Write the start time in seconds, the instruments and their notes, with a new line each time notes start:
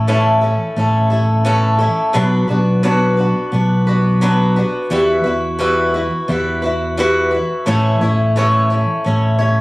Already playing: fingered electric bass A1
0.07 steel-string acoustic guitar A2 E3 A3 C#4 E4 A4
0.41 steel-string acoustic guitar A3 C#4 E4 A4
0.76 fingered electric bass A1, steel-string acoustic guitar A3 C#4 E4 A4
1.10 steel-string acoustic guitar A3 C#4 E4 A4
1.45 steel-string acoustic guitar A2 E3 A3 C#4 E4 A4
1.79 steel-string acoustic guitar A3 C#4 E4 A4
2.13 fingered electric bass B1, steel-string acoustic guitar B2 F#3 B3 D4 F#4 B4
2.48 fingered electric bass B1, steel-string acoustic guitar B3 D4 F#4 B4
2.83 steel-string acoustic guitar B2 F#3 B3 D4 F#4 B4
3.17 steel-string acoustic guitar B3 D4 F#4 B4
3.52 fingered electric bass B1, steel-string acoustic guitar B3 D4 F#4 B4
3.87 steel-string acoustic guitar B3 D4 F#4 B4
4.21 steel-string acoustic guitar B2 F#3 B3 D4 F#4 B4
4.56 steel-string acoustic guitar B3 D4 F#4 B4
4.90 fingered electric bass E2, steel-string acoustic guitar E3 G3 E4 F#4 B4
5.24 fingered electric bass E2, steel-string acoustic guitar E4 F#4 B4
5.59 steel-string acoustic guitar E3 G3 E4 F#4 B4
5.94 steel-string acoustic guitar E4 F#4 B4
6.28 fingered electric bass E2, steel-string acoustic guitar G3 E4 F#4 B4
6.62 steel-string acoustic guitar E4 F#4 B4
6.97 steel-string acoustic guitar E3 G3 E4 F#4 B4
7.31 steel-string acoustic guitar E4 F#4 B4
7.66 fingered electric bass A1, steel-string acoustic guitar A2 E3 A3 C#4 E4 C#5
8.01 fingered electric bass A1, steel-string acoustic guitar A3 C#4 E4 C#5
8.36 steel-string acoustic guitar A2 E3 A3 C#4 E4 C#5
8.70 steel-string acoustic guitar A3 C#4 E4 C#5
9.04 fingered electric bass A1, steel-string acoustic guitar A3 C#4 E4 C#5
9.39 steel-string acoustic guitar A3 C#4 E4 C#5